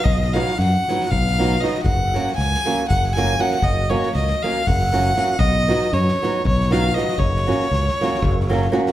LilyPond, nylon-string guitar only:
\new Staff \with { instrumentName = "Nylon-string guitar" } { \time 7/8 \key fis \major \tempo 4 = 118 r8 <fis b dis' fis'>8 r8 <fis b dis' fis'>8 r8 <fis b dis' fis'>8 <fis b dis' fis'>8 | r8 <fis ais cis' fis'>8 r8 <fis ais cis' fis'>8 r8 <fis ais cis' fis'>8 <fis ais cis' fis'>8 | r8 <fis ais cis' fis'>8 r8 <fis ais cis' fis'>8 r8 <fis ais cis' fis'>8 <fis ais cis' fis'>8 | r8 <fis b dis' fis'>8 r8 <fis b dis' fis'>8 r8 <fis b dis' fis'>8 <fis b dis' fis'>8 |
r8 <fis ais cis' fis'>8 r8 <fis ais cis' fis'>8 r8 <fis ais cis' fis'>8 <fis ais cis' fis'>8 | }